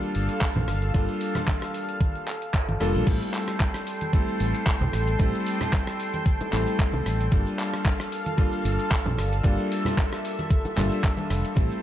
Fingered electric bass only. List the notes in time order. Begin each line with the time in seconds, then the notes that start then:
0.16 G1
0.56 A#1
0.68 G1
2.69 G1
2.81 F1
2.95 A#1
3.07 A1
4.40 A1
4.81 C2
4.93 A1
6.40 muted fingered electric bass stroke
6.53 A1
6.94 C2
7.06 A1
7.32 G1
8.65 G1
9.06 A#1
9.18 G1
10.65 muted fingered electric bass stroke
10.77 G1
11.31 F1
11.57 A1